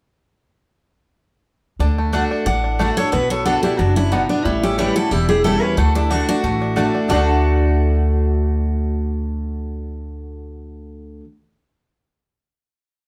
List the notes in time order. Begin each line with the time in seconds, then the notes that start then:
1.79 D2 D3 D4
1.98 A3
2.12 D3 A3 D4 F#4 D5 F#5
2.31 D4
2.46 A1 A2 D4 D5 F#5
2.64 D4
2.79 D3 A3 D4 F#4 D5 F#5
2.97 D4 F#4 A4 C#5
3.12 B1 B2 B3 F#4 B4
3.30 B3 A4 C#5
3.45 D3 B3 D4 F#4 A4 D5 F#5
3.63 D4 E4 G4
3.78 F#1 F#2 D4 F#4
3.96 C#4 D4 E4
4.12 B2 B3 D#4 F#4 D5 F#5
4.29 B3 D4
4.45 A1 A2 G3 C#4 E4
4.63 C#4 E4 G4
4.78 E3 G3 A3 C#4 E4 G4 B4 C#5 G5
4.96 C#4 E4 F#4 A4
5.11 E1 E2 G3 E4 G4
5.29 E4 G4 G#4
5.44 E3 G3 A3 C#4 E4 A4 C#5 G5
5.61 C#4 G4 B4
5.77 D2 D3 A3 F#4 A4
5.95 D4 E4 G4
6.10 D3 A3 D4 F#4 D5 F#5
6.29 D4 F#4
6.44 A1 A2 A3
6.62 D4
6.76 D3 A3 D4 F#4 D5 F#5
6.95 D4
7.08 D2 D3 A3 D4 F#4 D5 F#5
7.12 F#4 A4